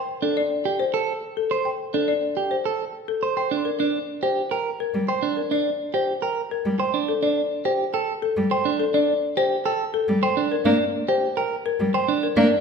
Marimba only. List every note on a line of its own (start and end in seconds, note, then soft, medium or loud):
0.00 0.12 G5 medium
0.22 0.41 A4 soft
0.37 0.55 D5 medium
0.80 0.98 C5 medium
1.37 1.55 A4 medium
1.65 1.84 G5 medium
1.94 2.12 A4 soft
2.08 2.27 D5 medium
2.51 2.69 C5 medium
3.08 3.27 A4 soft
3.37 3.55 G5 medium
3.65 3.84 A#4 soft
3.79 3.98 D5 medium
4.23 4.41 C5 medium
4.52 4.70 G5 medium
4.80 4.98 A#4 medium
5.09 5.27 G5 medium
5.37 5.55 A#4 soft
5.52 5.70 D5 medium
5.94 6.12 C5 medium
6.23 6.41 G5 medium
6.51 6.70 A#4 medium
6.79 6.98 G5 medium
7.08 7.27 A4 medium
7.23 7.41 D5 medium
7.65 7.84 C5 medium
7.93 8.12 G5 medium
8.22 8.41 A4 medium
8.51 8.70 G5 medium
8.79 8.98 A4 medium
8.94 9.12 D5 medium
9.37 9.55 C5 medium
9.66 9.84 G5 medium
9.94 10.12 A4 medium
10.23 10.41 G5 medium
10.52 10.70 A#4 medium
10.66 10.84 D5 medium
11.09 11.27 C5 medium
11.37 11.55 G5 medium
11.66 11.84 A#4 medium
11.94 12.13 G5 medium
12.23 12.41 A#4 medium
12.37 12.55 D5 medium